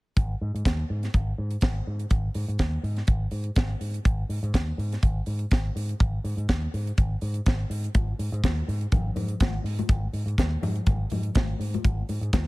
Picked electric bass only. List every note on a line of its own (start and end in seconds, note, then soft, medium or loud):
0.17 0.34 G#1 medium
0.41 0.50 G#2 medium
0.55 0.62 G#2 medium
0.66 0.83 D#2 medium
0.90 1.07 G#2 medium
1.15 1.31 G#1 medium
1.38 1.55 G#2 medium
1.62 1.79 G#1 loud
1.87 2.04 G#2 medium
2.11 2.28 G#1 medium
2.35 2.44 G#2 medium
2.48 2.56 G#2 medium
2.59 2.77 D#2 medium
2.83 3.01 G#2 medium
3.08 3.25 G#1 medium
3.32 3.49 G#2 medium
3.57 3.74 G#1 loud
3.81 3.98 G#2 medium
4.05 4.23 G#1 loud
4.29 4.39 G#2 medium
4.43 4.51 G#2 medium
4.54 4.72 D#2 medium
4.78 4.95 G#2 medium
5.03 5.20 G#1 medium
5.27 5.44 G#2 medium
5.52 5.69 G#1 medium
5.76 5.93 G#2 medium
6.00 6.17 G#1 medium
6.24 6.34 G#2 medium
6.37 6.45 G#2 medium
6.49 6.66 D#2 medium
6.74 6.91 G#2 medium
6.98 7.15 G#1 medium
7.22 7.39 G#2 medium
7.46 7.64 G#1 loud
7.70 7.87 G#2 medium
7.95 8.12 G#1 medium
8.19 8.28 G#2 medium
8.32 8.40 G#2 medium
8.44 8.61 D#2 medium
8.68 8.85 G#2 medium
8.92 9.09 G#1 medium
9.16 9.33 G#2 medium
9.41 9.58 G#1 loud
9.64 9.82 G#2 medium
9.89 10.06 G#1 medium
10.13 10.23 G#2 medium
10.26 10.34 G#2 medium
10.38 10.55 D#2 medium
10.62 10.80 G#2 medium
10.87 11.04 G#1 medium
11.12 11.29 G#2 medium
11.35 11.53 G#1 loud
11.60 11.77 G#2 medium
11.85 12.02 G#1 medium
12.09 12.18 G#2 medium
12.21 12.29 G#2 medium
12.33 12.47 D#2 medium